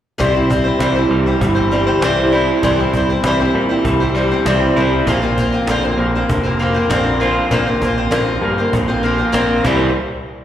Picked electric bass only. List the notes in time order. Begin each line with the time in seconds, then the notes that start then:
0.20 C2
0.79 C2
1.10 C2
1.41 G1
2.01 C2
2.63 C2
2.93 C2
3.24 C2
3.55 A#2
3.85 C2
4.45 C2
4.77 C2
5.07 A#1
5.68 A#1
5.98 A#1
6.29 F1
6.89 A#1
7.51 A#1
7.81 A#1
8.11 A#1
8.42 G2
8.73 A#1
9.34 A#1
9.64 C2